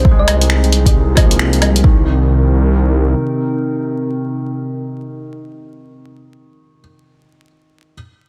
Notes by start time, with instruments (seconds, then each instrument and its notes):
Already playing: detuned saw bass C2, ambient pad C3 C4 D#4 G#4, felt piano G#3 C4, synth pluck C5, synth texture G5
0.05 kick
0.11 felt piano G#3
0.19 synth pluck D#5
0.28 open hi-hat, low woodblock
0.41 closed hi-hat
0.50 finger snap
0.64 closed hi-hat
0.72 open hi-hat
0.86 kick, closed hi-hat
1.15 felt piano F3, kick, open hi-hat, low woodblock
1.20 felt piano G#3
1.25 felt piano A#3
1.31 closed hi-hat
1.39 finger snap
1.53 closed hi-hat
1.62 open hi-hat, low woodblock
1.76 closed hi-hat
1.83 detuned saw bass C2, ambient pad C3 C4 D#4 A#4, felt piano D#3, kick